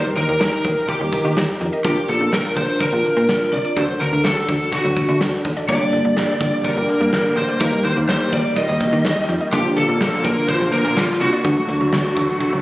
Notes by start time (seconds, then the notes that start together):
Already playing: D#4 G4 A#4
0.05 G3
0.16 D#2 D#3 A#4, closed hi-hat
0.29 D#2 A#3, closed hi-hat
0.41 D#2 D#3 A#4, snare
0.53 G4
0.65 D#2 D#3, kick, closed hi-hat
0.77 closed hi-hat
0.89 D#3 G4, kick, closed hi-hat
1.01 D#2 G3
1.13 D#3, kick, closed hi-hat
1.25 D#3 A#3, closed hi-hat
1.37 D#2 D#3, snare
1.61 F2 D#3, closed hi-hat
1.73 D#5, closed hi-hat
1.85 A#1 D3 D4 F4 G4 A#4, kick, closed hi-hat
1.97 F3
2.08 A#1 D3 A4, closed hi-hat
2.21 A#1 A#3, closed hi-hat
2.33 A#1 D3 A#4, snare
2.45 F4
2.57 A#1 D3 C5, kick, closed hi-hat
2.69 closed hi-hat
2.80 D3 A#4, kick, closed hi-hat
2.93 A#1 F3
3.05 D3, closed hi-hat
3.17 A#2 A#3, closed hi-hat
3.29 A#1 D3, snare
3.53 C2 D3 D5, closed hi-hat
3.65 D5, closed hi-hat
3.77 D2 D3 D4 F#4 A4 C5, kick, closed hi-hat
3.89 F#3
4.00 D2 D3 A#4, closed hi-hat
4.13 D2 A3, closed hi-hat
4.25 D2 D3 A4, snare
4.37 F#4
4.49 D2 D3, kick, closed hi-hat
4.61 closed hi-hat
4.72 D3 F#4, kick, closed hi-hat
4.85 D2 F#3
4.97 D3, kick, closed hi-hat
5.09 D3 A3, closed hi-hat
5.21 D2 D3, snare
5.45 D#2 D3, kick, closed hi-hat
5.57 D5, closed hi-hat
5.69 G1 D3 G3 A#3 D4 G4 D5, kick, closed hi-hat
5.81 G3
5.92 G1 D3, closed hi-hat
6.05 G1 A#3, closed hi-hat
6.17 G1 D3, snare
6.29 G4
6.41 G1 D3, kick, closed hi-hat
6.53 closed hi-hat
6.65 D3 A#4, kick, closed hi-hat
6.77 G1 G3
6.89 D3, closed hi-hat
7.01 G2 A#3, closed hi-hat
7.13 G1 D3, snare
7.37 A1 D3 C5, closed hi-hat
7.49 D5, closed hi-hat
7.61 D#2 D#3 G3 A#3 D#4 G4 A#4, kick, closed hi-hat
7.73 G3
7.84 D#2 D#3 C5, closed hi-hat
7.97 D#2 A#3, closed hi-hat
8.09 D#2 D#3 C5, snare
8.21 G4
8.33 D#2 D#3 D5, kick, closed hi-hat
8.45 closed hi-hat
8.57 D#3 D#5, kick, closed hi-hat
8.69 D#2 G3
8.81 D#3, kick, closed hi-hat
8.93 D#3 A#3, closed hi-hat
9.05 D#2 D#3, snare
9.29 F2 D#3, closed hi-hat
9.41 D#5, closed hi-hat
9.53 A#1 D3 F3 A#3 D4 F4 G4, kick, closed hi-hat
9.65 F3
9.77 A#1 D3 A4, closed hi-hat
9.89 A#1 A#3, closed hi-hat
10.01 A#1 D3, snare
10.13 F4
10.25 A#1 D3 A#4, kick, closed hi-hat
10.37 closed hi-hat
10.49 D3 C5, kick, closed hi-hat
10.61 A#1 F3
10.73 D3 A#4, closed hi-hat
10.85 A#2 A#3, closed hi-hat
10.97 A#1 D3 F4, snare
11.21 C2 D3 F#4, closed hi-hat
11.33 D5, closed hi-hat
11.45 D2 D3 F#3 A3 D4 F#4, kick, closed hi-hat
11.57 F#3
11.68 D2 D3, closed hi-hat
11.81 D2 A3, closed hi-hat
11.93 D2 D3, snare
12.05 F#4
12.17 D2 D3, kick, closed hi-hat
12.29 closed hi-hat
12.40 D3, kick, closed hi-hat
12.53 D2 F#3